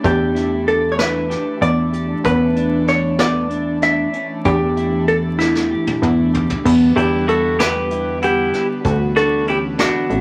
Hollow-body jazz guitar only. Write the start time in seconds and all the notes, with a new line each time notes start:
0.06 G4
0.68 A4
0.92 C#5
0.99 B4
1.62 D5
2.25 B4
2.89 C#5
3.20 D5
3.83 E5
4.45 G4
5.08 A4
5.39 E4
6.96 G4
7.29 A4
7.61 B4
8.24 G4
9.17 A4
9.50 G4
9.80 F#4